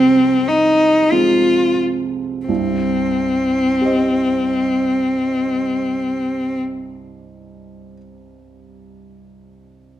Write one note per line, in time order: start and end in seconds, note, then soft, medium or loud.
0.00 1.94 C3 soft
0.00 1.12 F3 soft
0.00 1.12 G#3 soft
0.00 0.50 C4 medium
0.00 1.12 C4 soft
0.49 1.13 D#4 medium
1.12 2.45 F3 soft
1.12 2.45 G#3 soft
1.12 2.45 C4 soft
1.12 1.80 F4 soft
2.46 6.61 C2 soft
2.46 6.61 G2 soft
2.46 6.59 C4 soft
3.81 7.94 G4 soft
3.81 7.96 C5 soft
3.81 7.98 D#5 soft